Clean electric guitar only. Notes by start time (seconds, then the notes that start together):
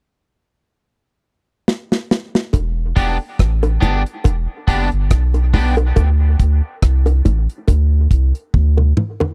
2.96 B3 D4 G4
3.80 B3 D4 G4
4.67 B3 D4 G4
5.54 B3 D4 G4